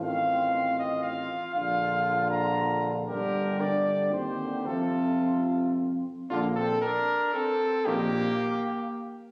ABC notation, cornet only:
X:1
M:3/4
L:1/8
Q:1/4=116
K:Bb
V:1 name="Cornet"
f3 e f2 | f3 b2 z | B2 d2 c2 | A4 z2 |
F A B2 A2 | G4- G z |]